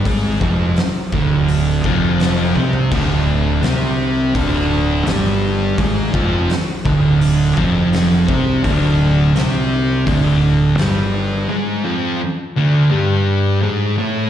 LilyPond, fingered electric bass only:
\new Staff \with { instrumentName = "Fingered electric bass" } { \clef bass \time 4/4 \key c \dorian \tempo 4 = 84 gis,,8 f,,8 r8 d,,4 f,,4 c,8 | d,,4 c,4 d,,4 g,,4 | gis,,8 f,,8 r8 d,,4 f,,4 c,8 | d,,4 c,4 d,,4 g,,4 |
r1 | }